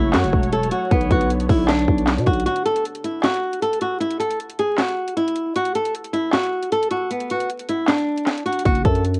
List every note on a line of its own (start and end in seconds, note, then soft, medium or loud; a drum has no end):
0.00 0.15 F#1 loud
0.00 0.90 F#3 medium
0.00 0.90 A3 medium
0.00 0.12 E4 medium
0.00 2.43 C#5 medium
0.13 0.26 F#2 loud
0.13 0.50 F#4 medium
0.13 snare loud
0.13 clap medium
0.13 closed hi-hat medium
0.24 0.33 F#1 loud
0.24 closed hi-hat medium
0.33 0.70 E1 loud
0.33 kick medium
0.43 closed hi-hat medium
0.53 0.71 A4 medium
0.53 closed hi-hat medium
0.63 closed hi-hat medium
0.71 0.90 F#4 medium
0.71 closed hi-hat medium
0.91 1.10 B1 loud
0.91 2.45 D3 medium
0.91 1.09 B3 medium
0.91 2.45 B3 medium
0.91 kick loud
0.91 closed hi-hat medium
1.01 closed hi-hat medium
1.11 1.48 B1 loud
1.11 1.29 F#4 medium
1.11 kick loud
1.11 closed hi-hat medium
1.21 closed hi-hat medium
1.30 closed hi-hat medium
1.40 closed hi-hat medium
1.49 1.86 B1 loud
1.49 1.68 E4 medium
1.49 kick loud
1.49 open hi-hat medium
1.68 2.23 D4 loud
1.68 snare loud
1.68 clap medium
1.68 closed hi-hat medium
1.79 closed hi-hat medium
1.88 2.19 B1 loud
1.88 kick medium
1.98 closed hi-hat medium
2.07 snare loud
2.07 clap medium
2.07 closed hi-hat medium
2.18 2.26 B2 loud
2.18 closed hi-hat medium
2.26 2.45 B1 loud
2.26 2.44 F#4 medium
2.26 kick medium
2.26 closed hi-hat soft
2.33 closed hi-hat medium
2.40 closed hi-hat medium
2.46 2.64 F#4 medium
2.46 closed hi-hat medium
2.56 closed hi-hat medium
2.65 2.83 A4 medium
2.65 closed hi-hat medium
2.76 closed hi-hat medium
2.85 closed hi-hat medium
2.95 closed hi-hat medium
3.04 3.22 E4 medium
3.04 closed hi-hat medium
3.23 3.60 F#4 medium
3.23 snare loud
3.23 clap medium
3.23 closed hi-hat medium
3.34 closed hi-hat medium
3.53 closed hi-hat medium
3.62 3.80 A4 medium
3.62 closed hi-hat medium
3.73 closed hi-hat medium
3.81 4.00 F#4 medium
3.81 closed hi-hat medium
4.00 4.19 E4 medium
4.00 closed hi-hat medium
4.11 closed hi-hat medium
4.20 4.38 A4 medium
4.20 closed hi-hat medium
4.31 closed hi-hat medium
4.40 closed hi-hat medium
4.50 closed hi-hat medium
4.59 4.77 G#4 medium
4.59 closed hi-hat medium
4.78 5.15 F#4 medium
4.78 snare loud
4.78 clap medium
4.78 closed hi-hat medium
4.89 closed hi-hat medium
5.08 closed hi-hat medium
5.17 5.53 E4 medium
5.17 closed hi-hat medium
5.28 closed hi-hat medium
5.36 closed hi-hat medium
5.56 5.74 F#4 medium
5.56 closed hi-hat medium
5.65 closed hi-hat medium
5.75 5.93 A4 medium
5.75 closed hi-hat medium
5.85 closed hi-hat medium
5.95 closed hi-hat medium
6.04 closed hi-hat medium
6.13 6.32 E4 medium
6.13 closed hi-hat medium
6.33 6.70 F#4 medium
6.33 snare loud
6.33 clap medium
6.33 closed hi-hat medium
6.43 closed hi-hat medium
6.63 closed hi-hat medium
6.72 6.90 A4 medium
6.72 closed hi-hat medium
6.83 closed hi-hat medium
6.91 7.09 F#4 medium
6.91 closed hi-hat medium
7.10 7.29 B3 medium
7.10 closed hi-hat medium
7.20 closed hi-hat medium
7.30 7.48 F#4 medium
7.30 closed hi-hat medium
7.40 closed hi-hat medium
7.50 closed hi-hat medium
7.59 closed hi-hat medium
7.69 7.87 E4 medium
7.69 closed hi-hat medium
7.88 8.43 D4 medium
7.88 snare loud
7.88 clap medium
7.88 closed hi-hat medium
7.98 closed hi-hat medium
8.18 closed hi-hat medium
8.26 snare medium
8.26 clap medium
8.26 closed hi-hat medium
8.38 closed hi-hat medium
8.46 8.64 F#4 medium
8.46 closed hi-hat soft
8.53 closed hi-hat medium
8.59 closed hi-hat medium
8.65 8.84 F#1 loud
8.65 8.83 F#4 medium
8.65 kick loud
8.65 closed hi-hat medium
8.75 closed hi-hat medium
8.85 9.20 F#2 loud
8.85 9.03 A4 medium
8.85 kick medium
8.85 closed hi-hat medium
8.95 closed hi-hat medium
9.05 closed hi-hat medium
9.14 closed hi-hat medium